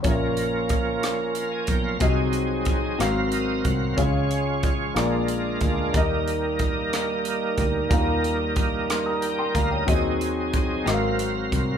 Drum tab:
HH |xxxxxx|xxxxxx|xxxxxx|xxxxxx|
SD |---r--|---r--|---r--|---r--|
BD |o-o--o|o-o--o|o-o--o|o-o--o|

HH |xxxxxx|xxxxxx|
SD |---r--|---r--|
BD |o-o--o|o-o--o|